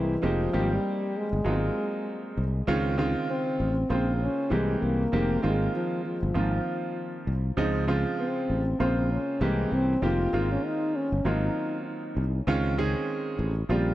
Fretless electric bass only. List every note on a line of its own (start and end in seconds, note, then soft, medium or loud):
0.00 0.16 C2 medium
0.24 0.46 F1 medium
0.54 0.77 G#1 medium
1.33 1.42 G1 medium
1.45 1.68 G#1 medium
2.37 2.60 C2 medium
2.68 3.14 C#2 loud
3.60 3.83 A1 medium
3.90 4.27 A#1 medium
4.51 4.74 C2 medium
4.82 5.05 C2 medium
5.13 5.36 F1 medium
5.44 5.67 G#1 medium
6.23 6.32 G1 medium
6.36 6.58 G#1 medium
7.27 7.50 C2 medium
7.57 8.04 C#2 medium
8.50 8.73 A1 medium
8.80 9.17 A#1 medium
9.41 9.64 C2 medium
9.72 9.95 C2 medium
10.02 10.25 F1 medium
10.33 10.56 G#1 medium
11.12 11.22 G1 medium
11.25 11.48 G#1 medium
12.17 12.40 C2 medium
12.47 12.93 C#2 medium
13.39 13.62 A1 medium
13.69 13.94 A#1 medium